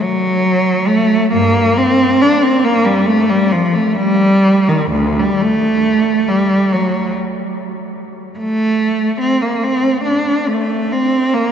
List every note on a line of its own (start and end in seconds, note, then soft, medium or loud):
0.01 0.86 F#3 medium
0.87 1.31 A3 medium
1.33 1.73 G2 medium
1.33 1.76 A#3 medium
1.77 2.20 C4 medium
2.21 2.42 D4 medium
2.43 2.63 C4 medium
2.65 2.85 A#3 medium
2.85 3.06 G3 medium
3.06 3.28 A3 medium
3.29 3.51 G3 medium
3.51 3.73 F3 medium
3.75 3.96 A3 medium
3.95 4.66 G3 medium
4.68 4.93 D#3 medium
4.92 5.17 D2 medium
5.19 5.43 G3 medium
5.42 6.27 A3 medium
6.28 6.70 G3 medium
6.72 7.12 F#3 medium
8.38 9.17 A3 medium
9.20 9.41 C4 medium
9.42 9.61 A#3 medium
9.64 10.04 C4 medium
10.05 10.46 D4 medium
10.47 10.90 A3 medium
10.92 11.34 C4 medium
11.34 11.52 A#3 medium